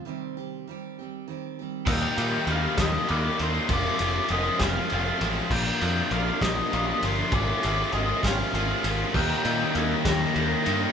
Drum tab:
CC |------|x-----|------|x-----|
RD |------|-xxxxx|xxxxxx|-xxxxx|
SD |------|---o--|---o--|---o--|
BD |------|o--o--|o--o--|o--o--|

CC |------|x-----|
RD |xxxxxx|-xxxxx|
SD |---o--|---o--|
BD |o--o--|o--o--|